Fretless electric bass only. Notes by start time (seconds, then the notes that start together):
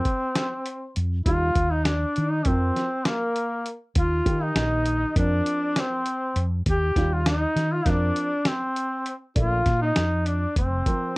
0.96 F2
1.26 D#2
1.55 D#2
2.17 D#3
2.46 F2
3.96 D#2
4.26 D#3
4.55 A#1
5.16 F2
6.35 F2
6.67 D#2
6.96 D#2
7.56 D#3
7.86 F2
9.37 A#1
9.66 A#2
9.97 F2
10.56 F1